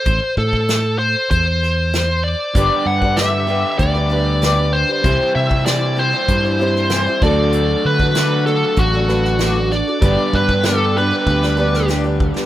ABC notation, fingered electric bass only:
X:1
M:4/4
L:1/16
Q:1/4=96
K:G
V:1 name="Fingered electric bass" clef=bass
A,,, z A,,6 E,,8 | G,,, z G,,6 D,,8 | C,, z C,6 G,,6 D,,2- | D,,2 D,6 A,,,8 |
G,,, z G,,6 D,,8 |]